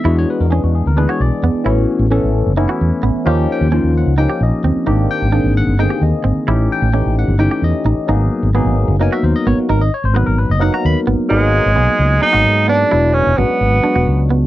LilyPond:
<<
  \new Staff \with { instrumentName = "Clean electric guitar" } { \time 7/8 \key gis \minor \tempo 4 = 131 e'8 r8 cis'8 r8 d'16 fis'8 r16 b8 | e'8 r8 cis'8 r8 dis'16 fis'8 r16 b8 | eis'8 r8 cis'8 r8 dis'16 g'8 r16 bis8 | dis'8 r8 d'8 r8 dis'16 g'8 r16 bis8 |
e'8 r8 cis'8 r8 dis'16 g'8 r16 dis'8 | dis'8 r8 b8 r8 dis'16 fis'8 r16 b8 | dis'8 r8 b8 r8 dis'16 fis'8 r16 b8 | dis'8 r8 b8 r8 dis'16 fis'8 r16 b8 |
e'8 r8 cis'8 r8 d'16 fis'8 r16 b8 | }
  \new Staff \with { instrumentName = "Tine electric piano" } { \time 7/8 \key gis \minor e''16 cis''16 b'16 ais'16 gis'16 fis'16 gis'16 ais'16 b'16 cis''16 d''4 | r2. r8 | r8 g''4 fis''8 g''8 dis''4~ | dis''8 g''4 fis''8 g''8 dis''4~ |
dis''8 g''4 fis''8 g''8 dis''4~ | dis''8 r4. gis''16 e''16 bis'16 dis''16 cis''16 fis'16 | ais'16 dis''16 cis''16 bis'16 b'16 ais'16 b'16 dis''16 fis''16 ais''16 b''8 r8 | r2. r8 |
r2. r8 | }
  \new Staff \with { instrumentName = "Tine electric piano" } { \time 7/8 \key gis \minor <e gis b d' fis'>4 <e gis b d'>4 <e gis b d' gis'>4. | <e a b cis' fis'>4 <e a b cis' a'>4 <e a b cis' e'>4. | <eis ais cis' dis' g'>4 <eis ais cis' dis' eis'>4 <eis ais cis' dis' g'>4. | <dis ais bis d' g'>4 <dis ais bis d' gis'>4 <d dis ais bis gis'>4. |
<e a cis' dis' g'>4 <e a cis' dis' g'>4 <e a cis' dis' g'>4. | <fis ais b dis' gis'>4 <fis ais b dis' gis'>4 <fis ais b dis' ais'>4.~ | <fis ais b dis' ais'>16 r8. <fis b dis' ais'>4 <fis ais b dis' ais'>4. | <fis ais b dis' gis'>4 <fis ais b dis' gis'>4 <fis ais b dis' gis'>4. |
<fis gis b d' e'>4 <fis gis b d' fis'>4 <fis gis b d' fis'>4. | }
  \new Staff \with { instrumentName = "Tenor saxophone" } { \time 7/8 \key gis \minor r2. r8 | r2. r8 | r2. r8 | r2. r8 |
r2. r8 | r2. r8 | r2. r8 | gis2 dis'4 d'8~ |
d'8 cis'8 b2 r8 | }
  \new Staff \with { instrumentName = "Fretless electric bass" } { \clef bass \time 7/8 \key gis \minor e,8 r16 e,8 e,8 d,8 r16 b,,16 r16 e,16 r16 | a,,8 r16 a,,8 a,,8 fis,,8 r16 e,16 r16 a,,16 r16 | dis,8 r16 dis,8 dis,8 cis,8 r16 ais,,16 r16 dis,16 r16 | gis,,8 r16 gis,,8 gis,,8 g,,8 r16 dis,16 r16 gis,,16 r16 |
a,,8 r16 a,,8 a,,8 g,,8 r16 e,16 r16 a,,16 r16 | gis,,8 r16 gis,,8 gis,,8 fis,,8 r16 dis,16 r16 gis,,16 r16 | gis,,8 r16 gis,,8 gis,,8 fis,,8 r16 dis,16 r16 gis,,16 r16 | gis,,8. gis,,16 b,,16 r16 cis,8 r16 gis,,16 gis,4 |
e,,8. e,,16 gis,,16 r16 gis,,8 r16 e,,16 cis,4 | }
>>